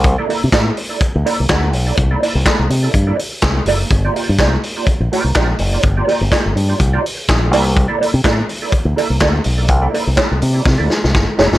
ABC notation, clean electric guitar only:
X:1
M:4/4
L:1/16
Q:"Swing 16ths" 1/4=124
K:Cmix
V:1 name="Clean electric guitar"
z [B,EAd] [B,EAd] z [B,EAd]2 z [B,EAd] z2 [B,EAd]2 [B,EAd]2 z [B,EAd] | z [B,EAd] [B,EAd] z [B,EAd]2 z [B,EAd] z [B,EAd]2 z3 [B,EAd]2 | z [B,FGd] [B,FGd] z [B,FGd]2 z [B,FGd] z2 [B,FGd]2 [B,FGd]2 z [B,FGd] | z [B,FGd] [B,FGd] z [B,FGd]2 z [B,FGd] z [B,FGd]2 z3 [B,EAd]2 |
z [B,EAd] [B,EAd] z [B,EAd]2 z [B,EAd] z2 [B,EAd]2 [B,EAd]2 z [B,EAd] | z [B,EAd] [B,EAd] z [B,EAd]2 z [B,EAd] z [B,EAd]2 z3 [B,EAd]2 |]